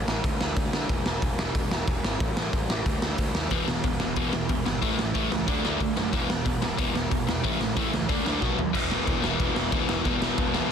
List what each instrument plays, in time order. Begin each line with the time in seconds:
0.08 picked electric bass A1, snare
0.24 picked electric bass D2, kick, open hi-hat
0.41 picked electric bass D2, snare
0.56 picked electric bass D2, kick, open hi-hat
0.73 picked electric bass D3, snare
0.89 picked electric bass E1, kick, open hi-hat
1.06 picked electric bass E1, snare
1.22 picked electric bass E1, kick, open hi-hat
1.39 picked electric bass E1, snare
1.55 picked electric bass E1, kick, open hi-hat
1.71 picked electric bass E1, snare
1.87 picked electric bass E1, kick, open hi-hat
2.04 picked electric bass G#1, snare
2.20 picked electric bass A1, kick, open hi-hat
2.36 picked electric bass A1, snare
2.53 picked electric bass A1, kick, open hi-hat
2.69 picked electric bass A1, snare
2.86 picked electric bass D2, kick, open hi-hat
3.02 picked electric bass D2, snare
3.18 picked electric bass D2, kick, open hi-hat
3.34 picked electric bass D#2, snare
3.50 picked electric bass E1, overdriven electric guitar E2 B2 E3, kick, open hi-hat
3.67 picked electric bass E1, overdriven electric guitar E2 B2, snare
3.84 picked electric bass E1, overdriven electric guitar E2 B2, kick, open hi-hat
4.00 picked electric bass E1, overdriven electric guitar E2 B2, snare
4.16 picked electric bass E1, overdriven electric guitar E2 B2 E3, kick, open hi-hat
4.33 picked electric bass E1, overdriven electric guitar E2 B2, snare
4.49 picked electric bass E1, overdriven electric guitar E2 B2, kick, open hi-hat
4.66 picked electric bass G#1, overdriven electric guitar E2 B2, snare
4.82 picked electric bass A1, overdriven electric guitar A2 E3 A3, kick, open hi-hat
4.99 picked electric bass A1, overdriven electric guitar A2 E3, snare
5.14 picked electric bass A1, overdriven electric guitar A2 E3 A3, kick, open hi-hat
5.31 picked electric bass C#2, overdriven electric guitar A2 E3, snare
5.48 picked electric bass D2, overdriven electric guitar D3 A3 D4, kick, open hi-hat
5.64 picked electric bass D2, overdriven electric guitar D3 A3 D4, snare
5.80 picked electric bass D2, overdriven electric guitar D3 A3, kick, open hi-hat
5.96 picked electric bass F#2, overdriven electric guitar D3 A3, snare
6.13 picked electric bass E1, overdriven electric guitar E2 B2 E3, kick, open hi-hat
6.29 picked electric bass E1, overdriven electric guitar E2 B2, snare
6.45 picked electric bass E1, overdriven electric guitar E2 B2, kick, open hi-hat
6.62 picked electric bass E1, overdriven electric guitar E2 B2, snare
6.77 picked electric bass E1, overdriven electric guitar E2 B2 E3, kick, open hi-hat
6.94 picked electric bass E1, overdriven electric guitar E2 B2, snare
7.11 picked electric bass E1, overdriven electric guitar E2 B2, kick, open hi-hat
7.27 picked electric bass E2, overdriven electric guitar E2 B2, snare
7.43 picked electric bass A1, overdriven electric guitar A2 E3 A3, kick, open hi-hat
7.60 picked electric bass A1, overdriven electric guitar A2 E3, snare
7.76 picked electric bass A1, overdriven electric guitar A2 E3 A3, kick, open hi-hat
7.93 picked electric bass C#2, overdriven electric guitar A2 E3, snare
8.09 picked electric bass D2, overdriven electric guitar D3 A3 D4, kick, open hi-hat
8.25 picked electric bass D2, overdriven electric guitar D3 A3 D4, snare
8.42 picked electric bass B1, overdriven electric guitar B2 F#3 B3, kick, snare
8.58 picked electric bass D#2, overdriven electric guitar B2 F#3, floor tom
8.74 picked electric bass E1, overdriven electric guitar E2 B2 E3, kick, crash
8.91 snare
9.07 picked electric bass E1, kick, crash
9.22 picked electric bass E1, overdriven electric guitar E2 B2 E3, snare
9.38 picked electric bass E1, distorted electric guitar E2 B2 E3, kick, crash
9.56 picked electric bass E1, snare
9.71 picked electric bass D2, overdriven electric guitar E2 B2 E3, kick, crash
9.89 picked electric bass E1, snare
10.05 picked electric bass E1, overdriven electric guitar E2 B2 E3, kick, crash
10.22 snare
10.38 picked electric bass E1, kick, crash
10.54 overdriven electric guitar E2 B2 E3, snare